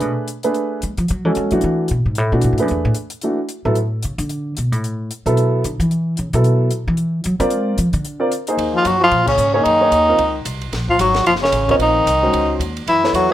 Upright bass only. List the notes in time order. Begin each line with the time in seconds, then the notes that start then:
0.02 B2
0.83 G#3
0.98 F3
1.10 F#3
1.25 E3
1.37 G#3
1.52 F#3
1.64 E3
1.91 B2
2.06 G#2
2.18 A2
2.32 B2
2.44 A2
2.53 G#2
2.62 F#2
2.71 E2
2.85 A2
3.65 A2
4.05 C#3
4.18 D3
4.58 B2
4.72 A2
5.26 B2
5.65 D3
5.80 E3
6.19 C#3
6.34 B2
6.88 E3
7.25 F#3
7.40 G#3
7.78 F3
7.94 D3
8.57 D#2
8.85 F#2
9.12 A#2
9.38 G#2
9.66 F#2
9.92 D#2
10.19 C#2
10.45 C2
10.72 A#1
10.99 G#1
11.26 F#1
11.52 A1
11.79 A#1
12.06 C2
12.34 C#2
12.59 D#2
12.87 F#2
13.13 E2